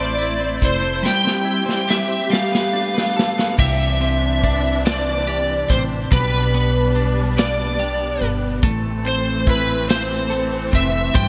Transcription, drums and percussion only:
0.21 closed hi-hat soft
0.62 kick medium
0.62 closed hi-hat soft
1.06 snare medium
1.27 snare medium
1.69 snare medium
1.90 snare medium
2.33 snare medium
2.55 snare medium
2.98 snare medium
3.19 snare medium
3.39 snare medium
3.59 kick loud
3.59 crash medium
4.02 closed hi-hat soft
4.44 kick medium
4.44 closed hi-hat soft
4.86 snare loud
4.86 closed hi-hat medium
5.27 closed hi-hat medium
5.70 kick medium
5.70 closed hi-hat medium
6.12 kick loud
6.12 closed hi-hat medium
6.54 closed hi-hat soft
6.95 closed hi-hat medium
7.38 snare loud
7.38 closed hi-hat medium
7.79 closed hi-hat soft
8.22 closed hi-hat medium
8.63 kick loud
8.63 closed hi-hat medium
9.05 closed hi-hat soft
9.47 kick loud
9.47 closed hi-hat soft
9.90 snare loud
9.90 closed hi-hat medium
10.31 closed hi-hat soft
10.73 kick medium
10.73 closed hi-hat medium
11.15 kick loud
11.15 closed hi-hat medium

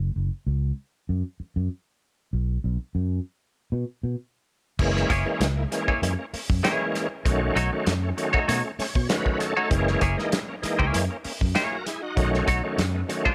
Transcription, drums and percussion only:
4.79 kick loud
4.79 crash loud
4.96 snare soft
5.10 kick medium
5.10 closed hi-hat medium
5.41 snare loud
5.41 closed hi-hat medium
5.72 snare soft
5.72 closed hi-hat medium
5.88 kick medium
6.03 closed hi-hat loud
6.34 open hi-hat medium
6.50 kick loud
6.64 snare loud
6.64 closed hi-hat loud
6.95 snare soft
6.95 closed hi-hat medium
7.26 kick loud
7.26 closed hi-hat medium
7.56 closed hi-hat medium
7.86 snare loud
7.86 closed hi-hat medium
8.18 closed hi-hat medium
8.34 kick loud
8.49 closed hi-hat loud
8.79 snare soft
8.79 open hi-hat medium
8.95 kick loud
9.10 snare loud
9.10 closed hi-hat loud
9.26 kick medium
9.40 snare soft
9.40 closed hi-hat medium
9.71 kick loud
9.71 closed hi-hat medium
9.87 snare soft
10.01 kick loud
10.01 closed hi-hat medium
10.19 snare soft
10.32 snare loud
10.32 closed hi-hat loud
10.63 snare soft
10.63 closed hi-hat medium
10.80 kick medium
10.94 closed hi-hat loud
11.24 open hi-hat medium
11.41 kick loud
11.55 snare loud
11.55 closed hi-hat loud
11.87 snare soft
11.87 closed hi-hat medium
12.17 kick loud
12.17 closed hi-hat medium
12.34 snare soft
12.48 kick loud
12.48 closed hi-hat medium
12.78 snare loud
12.78 closed hi-hat medium
13.10 closed hi-hat medium
13.26 kick loud

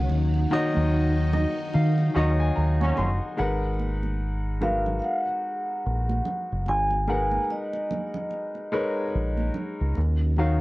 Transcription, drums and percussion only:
0.09 muted conga soft
0.34 muted conga soft
0.50 high conga medium
0.74 high conga medium
1.33 high conga medium
1.33 low conga medium
1.74 muted conga soft
1.98 muted conga soft
2.81 muted conga soft
2.81 high conga medium
2.97 high conga soft
2.97 low conga medium
3.38 muted conga soft
3.79 high conga medium
4.03 high conga medium
4.62 high conga medium
4.62 low conga medium
4.86 low conga medium
5.02 muted conga soft
6.09 muted conga soft
6.09 high conga medium
6.25 low conga medium
6.66 muted conga soft
6.91 muted conga soft
7.08 high conga medium
7.31 high conga medium
7.50 muted conga soft
7.73 muted conga soft
7.91 high conga medium
7.91 low conga medium
8.14 low conga medium
8.31 muted conga soft
8.55 muted conga soft
9.37 muted conga soft
9.37 high conga medium
9.54 low conga medium
9.95 muted conga soft
10.37 high conga medium

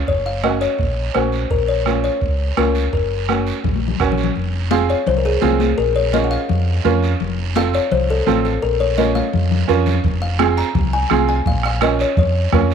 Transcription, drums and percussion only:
0.07 bombo low medium
0.07 high conga soft
0.07 long guiro medium
0.43 bombo rim medium
0.43 high conga medium
0.43 short guiro medium
0.61 short guiro medium
0.79 bombo low medium
0.79 high conga soft
0.79 long guiro medium
1.14 bombo rim medium
1.14 high conga medium
1.14 short guiro medium
1.32 short guiro medium
1.50 bombo low medium
1.50 high conga soft
1.50 long guiro medium
1.86 bombo rim medium
1.86 high conga medium
1.86 short guiro medium
2.04 short guiro medium
2.21 bombo low medium
2.21 high conga soft
2.21 long guiro medium
2.57 bombo rim medium
2.57 high conga medium
2.57 short guiro medium
2.75 short guiro medium
2.93 bombo low medium
2.93 high conga soft
2.93 long guiro medium
3.28 bombo rim medium
3.28 high conga medium
3.28 short guiro medium
3.47 short guiro medium
3.64 bombo low medium
3.64 low conga medium
3.64 long guiro medium
3.76 high conga medium
3.88 low conga medium
4.00 bombo low medium
4.00 bombo rim medium
4.00 low conga medium
4.00 short guiro medium
4.12 low conga medium
4.18 short guiro medium
4.23 low conga medium
4.35 high conga soft
4.35 long guiro medium
4.53 high conga soft
4.71 high conga loud
4.71 short guiro medium
4.89 short guiro medium
5.07 low conga medium
5.07 long guiro medium
5.42 high conga medium
5.42 low conga medium
5.42 short guiro medium
5.60 high conga medium
5.60 short guiro medium
5.78 high conga soft
5.78 long guiro medium
5.96 high conga soft
6.14 high conga loud
6.14 short guiro medium
6.32 short guiro medium
6.49 low conga medium
6.49 long guiro medium
6.85 high conga medium
6.85 low conga medium
6.85 short guiro medium
7.03 short guiro medium
7.20 high conga soft
7.20 low conga medium
7.20 long guiro medium
7.38 high conga soft
7.56 high conga loud
7.56 short guiro medium
7.74 short guiro medium
7.91 low conga medium
7.91 long guiro medium
8.27 high conga medium
8.27 low conga medium
8.27 short guiro medium
8.45 short guiro medium
8.63 high conga soft
8.63 long guiro medium
8.80 high conga soft
8.98 high conga medium
8.98 short guiro medium
9.15 high conga medium
9.15 short guiro medium
9.33 low conga medium
9.33 long guiro medium
9.51 low conga medium
9.69 low conga medium
9.69 short guiro medium
9.86 low conga medium
9.86 short guiro medium
10.04 bombo low medium
10.04 high conga soft
10.04 low conga medium
10.04 long guiro medium
10.22 high conga soft
10.39 bombo rim medium
10.39 high conga loud
10.39 short guiro medium
10.57 short guiro medium
10.75 bombo low medium
10.75 low conga medium
10.75 long guiro medium
11.10 bombo rim medium
11.10 high conga medium
11.10 low conga medium
11.10 short guiro medium
11.28 short guiro medium
11.46 bombo low medium
11.46 high conga soft
11.46 low conga medium
11.46 long guiro medium
11.63 bombo rim medium
11.63 high conga soft
11.81 bombo rim medium
11.81 high conga medium
11.81 short guiro medium
11.99 short guiro medium
12.17 bombo low medium
12.17 low conga medium
12.17 long guiro medium
12.52 bombo low medium
12.52 bombo rim medium
12.52 high conga medium
12.52 low conga medium
12.52 short guiro medium
12.71 short guiro medium

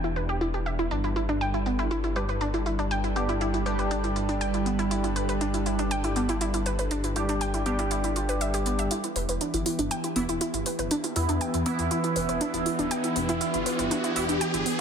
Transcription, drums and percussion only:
0.04 closed hi-hat soft
0.16 closed hi-hat soft
0.29 closed hi-hat soft
0.41 closed hi-hat medium
0.54 closed hi-hat soft
0.66 closed hi-hat medium
0.79 closed hi-hat soft
0.91 closed hi-hat medium
1.04 closed hi-hat soft
1.16 closed hi-hat medium
1.29 closed hi-hat soft
1.41 closed hi-hat medium
1.54 closed hi-hat soft
1.66 closed hi-hat soft
1.79 closed hi-hat soft
1.91 closed hi-hat medium
2.04 closed hi-hat soft
2.16 closed hi-hat soft
2.29 closed hi-hat soft
2.41 closed hi-hat medium
2.54 closed hi-hat soft
2.66 closed hi-hat medium
2.79 closed hi-hat soft
2.91 closed hi-hat medium
3.04 closed hi-hat soft
3.16 closed hi-hat soft
3.29 closed hi-hat soft
3.41 closed hi-hat medium
3.54 closed hi-hat soft
3.66 closed hi-hat soft
3.79 closed hi-hat soft
3.91 closed hi-hat medium
4.04 closed hi-hat soft
4.16 closed hi-hat soft
4.29 closed hi-hat soft
4.41 closed hi-hat medium
4.54 closed hi-hat soft
4.66 closed hi-hat medium
4.79 closed hi-hat soft
4.91 closed hi-hat medium
5.04 closed hi-hat soft
5.16 closed hi-hat medium
5.29 closed hi-hat soft
5.41 closed hi-hat medium
5.54 closed hi-hat soft
5.66 closed hi-hat soft
5.79 closed hi-hat soft
5.91 closed hi-hat medium
6.04 closed hi-hat soft
6.16 closed hi-hat soft
6.29 closed hi-hat soft
6.41 closed hi-hat medium
6.54 closed hi-hat soft
6.66 closed hi-hat medium
6.79 closed hi-hat soft
6.91 closed hi-hat medium
7.04 closed hi-hat soft
7.16 closed hi-hat medium
7.29 closed hi-hat soft
7.41 closed hi-hat medium
7.54 closed hi-hat soft
7.66 closed hi-hat medium
7.79 closed hi-hat soft
7.91 closed hi-hat medium
8.04 closed hi-hat soft
8.16 closed hi-hat medium
8.29 closed hi-hat soft
8.41 closed hi-hat medium
8.54 closed hi-hat soft
8.66 closed hi-hat medium
8.79 closed hi-hat soft
8.91 closed hi-hat medium
9.04 closed hi-hat soft
9.16 open hi-hat loud
9.29 closed hi-hat soft
9.41 closed hi-hat medium
9.54 closed hi-hat soft
9.66 open hi-hat loud
9.79 closed hi-hat soft
9.91 closed hi-hat medium
10.04 closed hi-hat soft
10.16 open hi-hat loud
10.29 closed hi-hat soft
10.41 closed hi-hat medium
10.54 closed hi-hat soft
10.66 open hi-hat loud
10.79 closed hi-hat soft
10.91 closed hi-hat medium
11.04 closed hi-hat soft
11.16 open hi-hat loud
11.29 closed hi-hat soft
11.41 closed hi-hat medium
11.54 closed hi-hat soft
11.66 open hi-hat loud
11.79 closed hi-hat soft
11.91 closed hi-hat medium
12.04 closed hi-hat soft
12.16 open hi-hat loud
12.29 closed hi-hat soft
12.41 closed hi-hat medium
12.54 closed hi-hat soft
12.66 open hi-hat loud
12.79 closed hi-hat soft
12.91 closed hi-hat medium
13.04 closed hi-hat soft
13.16 open hi-hat loud
13.29 closed hi-hat soft
13.41 closed hi-hat medium
13.54 closed hi-hat soft
13.66 open hi-hat loud
13.79 closed hi-hat soft
13.91 closed hi-hat medium
14.04 closed hi-hat soft
14.16 open hi-hat loud
14.29 closed hi-hat soft
14.41 closed hi-hat medium
14.54 closed hi-hat soft
14.66 open hi-hat loud

